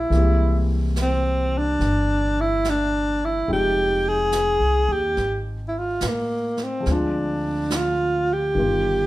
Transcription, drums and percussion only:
0.12 brush sweep soft
0.12 snare soft
0.96 snare soft
0.96 hi-hat pedal soft
1.80 brush sweep soft
1.80 snare soft
2.65 snare soft
2.65 hi-hat pedal soft
3.48 brush sweep soft
4.32 snare soft
4.32 hi-hat pedal soft
5.17 brush sweep soft
5.17 snare soft
6.01 snare soft
6.01 hi-hat pedal soft
6.57 snare soft
6.86 brush sweep soft
6.86 snare soft
7.70 snare soft
7.70 hi-hat pedal soft
8.55 brush sweep soft

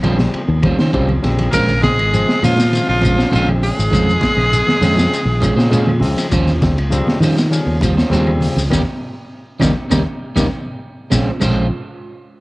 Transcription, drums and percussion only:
0.03 ride bell medium
0.03 high conga medium
0.03 claves medium
0.19 snare medium
0.19 low conga medium
0.34 ride bell medium
0.63 kick medium
0.63 ride bell medium
0.63 high conga loud
0.63 claves medium
0.79 snare medium
0.93 kick medium
0.93 ride bell medium
0.93 low conga medium
1.09 high conga loud
1.09 claves medium
1.24 snare soft
1.24 ride bell medium
1.24 high conga medium
1.38 ride bell medium
1.38 high conga medium
1.52 kick loud
1.52 snare soft
1.52 ride bell medium
1.52 low conga medium
1.52 claves medium
1.52 shekere medium
1.68 high conga medium
1.68 shekere soft
1.82 kick medium
1.82 snare medium
1.82 ride bell medium
1.82 high conga medium
1.82 shekere soft
1.99 ride bell medium
1.99 claves medium
2.13 ride bell medium
2.13 shekere loud
2.29 snare medium
2.42 open hi-hat medium
2.42 high conga medium
2.42 claves medium
2.42 shekere loud
2.57 snare medium
2.57 low conga medium
2.57 shekere medium
2.73 ride bell medium
2.73 shekere medium
3.02 kick medium
3.02 ride bell soft
3.02 high conga loud
3.02 claves medium
3.02 shekere loud
3.19 snare medium
3.19 shekere soft
3.31 snare soft
3.31 ride bell soft
3.31 low conga medium
3.35 shekere loud
3.47 high conga medium
3.47 claves medium
3.63 open hi-hat medium
3.63 shekere soft
3.80 shekere medium
3.90 kick loud
3.90 ride bell medium
3.90 low conga medium
3.90 claves medium
3.90 shekere medium
4.09 shekere soft
4.21 kick medium
4.21 snare medium
4.21 ride bell medium
4.21 high conga loud
4.21 shekere soft
4.38 snare soft
4.38 claves medium
4.53 ride bell medium
4.53 shekere loud
4.68 snare medium
4.68 high conga medium
4.82 open hi-hat medium
4.82 high conga medium
4.82 claves medium
4.82 shekere medium
4.97 snare medium
4.97 low conga medium
4.97 shekere medium
5.14 ride bell medium
5.14 shekere medium
5.42 kick medium
5.42 ride bell medium
5.42 high conga loud
5.42 claves medium
5.42 shekere loud
5.59 snare medium
5.59 shekere soft
5.72 ride bell medium
5.72 low conga medium
5.72 shekere loud
5.86 high conga loud
5.86 claves medium
6.00 open hi-hat medium
6.00 high conga medium
6.04 shekere soft
6.18 snare soft
6.18 ride bell medium
6.18 shekere medium
6.31 kick loud
6.31 ride bell medium
6.31 low conga medium
6.31 claves medium
6.31 shekere medium
6.47 snare soft
6.47 high conga medium
6.47 shekere soft
6.62 kick medium
6.62 snare medium
6.62 ride bell medium
6.62 high conga loud
6.62 shekere soft
6.78 ride bell medium
6.78 claves medium
6.92 ride bell medium
6.92 shekere loud
7.07 snare medium
7.07 high conga medium
7.22 open hi-hat medium
7.22 high conga medium
7.22 claves medium
7.22 shekere medium
7.38 snare medium
7.38 shekere medium
7.53 ride bell medium
7.53 shekere medium
7.81 kick medium
7.81 snare soft
7.81 ride bell medium
7.81 high conga loud
7.81 claves medium
7.81 shekere loud
7.98 snare medium
7.98 shekere soft
8.12 snare soft
8.12 ride bell medium
8.12 low conga medium
8.12 shekere loud
8.27 high conga medium
8.27 claves medium
8.41 open hi-hat medium
8.41 high conga medium
8.41 shekere soft
8.55 high conga medium
8.55 shekere medium
8.70 kick medium
8.70 snare medium
8.70 high conga loud
8.70 claves medium
8.70 shekere loud
9.60 kick loud
9.60 snare medium
9.60 high conga loud
9.60 claves loud
9.60 shekere loud
9.91 kick medium
9.91 snare medium
9.91 high conga loud
9.91 claves loud
9.91 shekere loud
10.36 kick medium
10.36 snare medium
10.36 high conga loud
10.36 claves medium
10.36 shekere loud
11.12 kick medium
11.12 snare medium
11.12 low conga medium
11.12 claves loud
11.12 shekere loud
11.41 kick medium
11.41 crash medium
11.41 low conga loud
11.41 claves loud
11.41 shekere loud

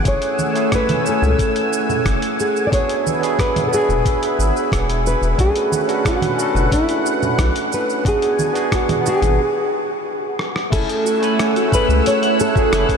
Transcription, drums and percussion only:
0.05 kick medium
0.05 closed hi-hat medium
0.05 cabasa soft
0.22 closed hi-hat soft
0.22 cabasa soft
0.39 high conga medium
0.39 cabasa medium
0.56 closed hi-hat soft
0.56 cabasa soft
0.72 kick medium
0.72 cross-stick medium
0.72 closed hi-hat medium
0.72 cabasa soft
0.89 closed hi-hat soft
0.89 high conga medium
0.89 low conga medium
0.89 cabasa soft
1.06 cabasa medium
1.22 low conga medium
1.22 cabasa soft
1.39 kick loud
1.39 closed hi-hat medium
1.39 cabasa soft
1.56 closed hi-hat soft
1.56 cabasa soft
1.73 cabasa medium
1.89 low conga medium
1.89 cabasa soft
2.05 kick medium
2.05 cross-stick loud
2.05 closed hi-hat medium
2.05 cabasa soft
2.22 closed hi-hat soft
2.22 cabasa soft
2.40 cabasa medium
2.56 cabasa soft
2.72 kick loud
2.72 closed hi-hat medium
2.72 cabasa soft
2.89 closed hi-hat soft
2.89 cabasa soft
3.07 high conga medium
3.07 cabasa medium
3.23 closed hi-hat soft
3.23 cabasa soft
3.39 kick medium
3.39 cross-stick medium
3.39 closed hi-hat medium
3.39 cabasa soft
3.56 closed hi-hat soft
3.56 high conga medium
3.56 low conga medium
3.56 cabasa soft
3.73 cabasa medium
3.90 low conga medium
3.90 cabasa soft
4.05 kick medium
4.05 closed hi-hat medium
4.05 cabasa soft
4.23 closed hi-hat soft
4.23 cabasa soft
4.40 cabasa medium
4.57 cabasa soft
4.72 kick medium
4.72 cross-stick medium
4.72 closed hi-hat medium
4.72 cabasa soft
4.90 closed hi-hat soft
4.90 cabasa soft
5.06 cabasa medium
5.23 cabasa soft
5.39 kick medium
5.39 closed hi-hat medium
5.39 cabasa soft
5.56 closed hi-hat soft
5.56 cabasa soft
5.72 high conga soft
5.72 cabasa medium
5.89 closed hi-hat soft
5.89 cabasa soft
6.05 kick loud
6.05 cross-stick medium
6.05 closed hi-hat medium
6.05 cabasa soft
6.22 closed hi-hat soft
6.22 high conga medium
6.22 low conga medium
6.22 cabasa soft
6.39 cabasa medium
6.55 low conga medium
6.55 cabasa soft
6.72 kick loud
6.72 closed hi-hat medium
6.72 cabasa soft
6.89 closed hi-hat soft
6.89 cabasa soft
7.06 cabasa medium
7.23 low conga medium
7.23 cabasa soft
7.38 kick medium
7.38 cross-stick loud
7.38 closed hi-hat medium
7.38 cabasa soft
7.56 closed hi-hat soft
7.56 cabasa soft
7.72 cabasa medium
7.90 cabasa soft
8.05 kick loud
8.05 closed hi-hat medium
8.05 cabasa soft
8.22 closed hi-hat soft
8.22 cabasa soft
8.39 high conga medium
8.39 cabasa medium
8.55 closed hi-hat soft
8.55 cabasa soft
8.72 kick loud
8.72 cross-stick medium
8.72 closed hi-hat medium
8.72 cabasa soft
8.89 closed hi-hat soft
8.89 high conga medium
8.89 low conga medium
8.89 cabasa soft
9.06 cabasa medium
9.22 closed hi-hat soft
9.22 low conga medium
9.22 cabasa soft
10.39 cross-stick medium
10.56 cross-stick medium
10.72 kick loud
10.72 closed hi-hat medium
10.72 crash medium
10.72 cabasa soft
10.89 closed hi-hat soft
10.89 cabasa soft
11.06 cabasa medium
11.23 closed hi-hat soft
11.23 cabasa soft
11.39 cross-stick loud
11.39 closed hi-hat medium
11.39 cabasa soft
11.56 closed hi-hat soft
11.56 cabasa soft
11.72 kick loud
11.72 cabasa medium
11.90 cabasa soft
12.06 closed hi-hat medium
12.06 cabasa soft
12.23 closed hi-hat soft
12.23 cabasa soft
12.40 cabasa medium
12.56 kick loud
12.56 cabasa soft
12.73 cross-stick loud
12.73 closed hi-hat medium
12.73 cabasa soft
12.89 kick medium
12.89 closed hi-hat soft
12.89 cabasa soft

